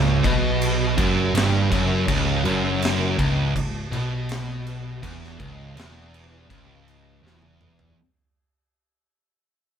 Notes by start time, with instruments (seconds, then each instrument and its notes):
Already playing: picked electric bass C#1, distorted electric guitar C#2
0.24 picked electric bass B1, distorted electric guitar B2, kick, crash
0.62 crash
0.97 picked electric bass F#1, distorted electric guitar F#2, kick, crash
1.33 picked electric bass G1, distorted electric guitar G2, crash
1.38 snare
1.70 picked electric bass F#1, distorted electric guitar F#2, kick, crash
2.07 picked electric bass C#1, distorted electric guitar C#2, kick, crash
2.44 picked electric bass F#1, distorted electric guitar F#2, crash
2.82 snare, crash
3.18 picked electric bass C#1, distorted electric guitar C#2, kick, crash
3.55 picked electric bass C#1, distorted electric guitar C#2, kick, crash
3.92 picked electric bass B1, distorted electric guitar B2, crash
4.29 snare, crash
4.67 crash
5.02 picked electric bass E1, distorted electric guitar E2, kick, crash
5.24 snare
5.39 picked electric bass C#1, distorted electric guitar C#2, kick, crash
5.75 picked electric bass E1, distorted electric guitar E2, crash
5.80 snare
6.14 crash
6.48 picked electric bass C#1, distorted electric guitar C#2, kick, crash
6.88 crash
7.22 picked electric bass E1, distorted electric guitar E2
7.27 snare
7.42 high tom
7.61 mid tom
7.79 floor tom